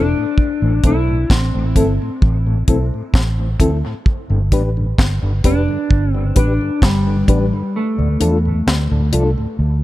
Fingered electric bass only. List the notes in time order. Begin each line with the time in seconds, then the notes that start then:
Already playing: E1
0.62 A1
0.84 B1
1.30 A1
1.55 A1
1.76 G1
2.23 A1
2.68 B1
3.14 A1
3.60 D2
4.30 G1
4.52 A1
4.98 G1
5.23 G1
5.45 F1
5.91 G1
6.37 A1
6.82 G1
7.29 A1
7.99 D2
8.21 E2
8.67 D2
8.92 D2
9.13 C2
9.59 D2